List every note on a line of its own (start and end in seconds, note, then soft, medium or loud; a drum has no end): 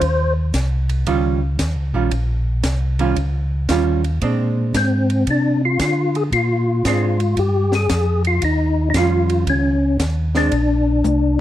0.00 0.53 D#2 medium
0.00 0.34 C5 loud
0.00 kick soft
0.00 ride medium
0.54 1.05 C2 medium
0.54 kick soft
0.54 snare medium
0.54 hi-hat pedal medium
0.54 ride medium
0.89 ride soft
1.06 1.58 C#2 medium
1.06 1.39 D#3 medium
1.06 1.39 G3 medium
1.06 1.39 C#4 medium
1.06 1.39 F4 medium
1.06 kick soft
1.06 ride medium
1.59 1.76 D#2 medium
1.59 kick soft
1.59 snare medium
1.59 hi-hat pedal medium
1.59 ride medium
1.76 1.94 C#2 medium
1.93 2.10 A#1 medium
1.93 2.10 D#3 medium
1.93 2.10 G3 medium
1.93 2.10 C#4 medium
1.93 2.10 F4 medium
2.11 2.63 A#1 medium
2.11 kick soft
2.11 ride medium
2.63 3.15 C2 medium
2.63 kick soft
2.63 snare medium
2.63 hi-hat pedal medium
2.63 ride medium
2.99 3.15 D#3 medium
2.99 3.15 G3 medium
2.99 3.15 C#4 medium
2.99 3.16 F4 medium
2.99 ride soft
3.16 3.68 C#2 medium
3.16 kick soft
3.16 ride medium
3.69 4.20 D#2 medium
3.69 4.01 D#3 medium
3.69 4.01 G3 medium
3.69 4.01 C#4 medium
3.69 4.01 F4 medium
3.69 kick soft
3.69 snare medium
3.69 hi-hat pedal medium
3.69 ride medium
4.04 ride soft
4.22 4.73 A#2 medium
4.22 5.03 G#3 medium
4.22 5.03 C4 medium
4.22 5.03 D4 medium
4.22 kick soft
4.22 ride medium
4.74 5.25 G#2 medium
4.74 5.30 C4 medium
4.74 kick soft
4.74 snare medium
4.74 hi-hat pedal medium
4.74 ride medium
5.10 ride soft
5.27 5.78 C3 medium
5.27 5.62 D4 medium
5.27 kick soft
5.27 ride medium
5.65 5.80 F4 medium
5.79 6.30 D3 medium
5.79 6.17 F4 medium
5.79 kick soft
5.79 snare medium
5.79 hi-hat pedal medium
5.79 ride medium
6.15 6.23 G#4 medium
6.15 ride soft
6.32 6.83 A#2 medium
6.32 6.86 F4 loud
6.32 kick soft
6.32 ride medium
6.85 7.35 G#2 medium
6.85 7.17 G#3 medium
6.85 7.17 C4 medium
6.85 7.17 D4 medium
6.85 7.40 F4 medium
6.85 kick soft
6.85 snare medium
6.85 hi-hat pedal soft
6.85 ride medium
7.20 ride soft
7.37 7.88 G2 medium
7.37 7.74 G4 medium
7.37 kick soft
7.37 ride medium
7.72 8.23 G#4 medium
7.72 snare medium
7.89 8.40 F2 medium
7.89 kick soft
7.89 snare medium
7.89 hi-hat pedal soft
7.89 ride medium
8.25 8.44 F4 medium
8.25 ride soft
8.42 8.93 D#2 medium
8.42 8.89 D#4 medium
8.42 kick soft
8.42 ride medium
8.90 9.45 F2 medium
8.90 8.95 D#4 medium
8.94 9.76 D#3 medium
8.94 9.76 G3 soft
8.94 9.76 C#4 medium
8.94 9.44 F4 medium
8.94 9.77 F4 medium
8.94 kick soft
8.94 snare medium
8.94 hi-hat pedal soft
8.94 ride medium
9.30 ride soft
9.47 9.98 C#2 medium
9.47 9.97 C#4 medium
9.47 kick soft
9.47 ride medium
9.99 10.50 D#2 medium
9.99 kick soft
9.99 snare medium
9.99 hi-hat pedal medium
9.99 ride medium
10.35 10.51 G#3 medium
10.35 10.51 C4 medium
10.35 10.51 D4 medium
10.35 11.40 D4 loud
10.35 snare soft
10.52 11.03 A#1 medium
10.52 kick soft
10.52 ride medium
11.04 11.40 C2 medium
11.04 hi-hat pedal soft
11.04 high tom soft